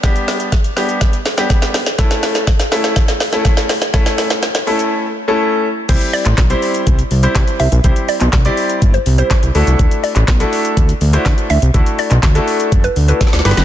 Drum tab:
CC |--------------------------------|--------------------------------|--------------------------------|x-------------------------------|
HH |x-x-o-x-x-x-o-x-x-x-o-x-x-x-o-x-|x-x-o-x-x-x-o-x-x-x-o-x-x-x-o-x-|x-x-o-x-x-x-o-x-----------------|x-x-o-x-x-x-o-x-x-x-o-x-x-x-o-x-|
SH |x-x-x-x-x-x-x-x-x-x-x-x-x-x-x-x-|x-x-x-x-x-x-x-x-x-x-x-x-x-x-x-x-|x-x-x-x-x-x-x-x-----------------|x-x-x-x-x-x-x-x-x-x-x-x-x-x-x-x-|
CP |--------------------------------|--------------------------------|--------------------------------|------x-x---------------x-------|
SD |o---o---o---o---o---o-o-o-o-o-o-|o-o-o-o-o-o-o-o-o-o-o-o-o-o-o-o-|o-o-o-o-o-o---------------------|--------o---------------o-------|
BD |o-------o-------o-------o-------|o-------o-------o-------o-------|o-------------------------------|o-------o-------o-------o-------|

CC |--------------------------------|--------------------------------|--------------------------------|
HH |x-x-o-x-x-x-o-x-x-x-o-x-x-x-o-x-|x-x-o-x-x-x-o-x-x-x-o-x-x-x-o-x-|x-x-o-x-x-x-o-x-x-x-o-x-x-x-o-x-|
SH |x-x-x-x-x-x-x-x-x-x-x-x-x-x-x-x-|x-x-x-x-x-x-x-x-x-x-x-x-x-x-x-x-|x-x-x-x-x-x-x-x-x-x-x-x-x-x-x-x-|
CP |------x-x---------------x-------|------x-x---------------x-------|------x-x-----------------------|
SD |--------o---------------o-------|--------o---------------o-------|--------o---------------ooooooo-|
BD |o-------o-------o-------o-------|o-------o-------o-------o-------|o-------o-------o-------o-------|